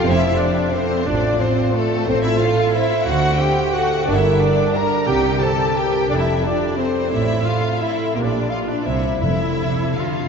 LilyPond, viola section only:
\new Staff \with { instrumentName = "Viola section" } { \time 3/4 \key f \major \tempo 4 = 175 c'16 e'8. d'4 c'4 | d'4 c'4 a4 | c'8 e'8 f'4 e'4 | fis'4 g'4 fis'4 |
d'16 e'8. d'4 bes'4 | g'4 a'4 g'4 | d'16 e'8. d'4 c'4 | e'4 f'4 e'4 |
bes16 d'8. f'8 d'8 e'4 | e'2 f'4 | }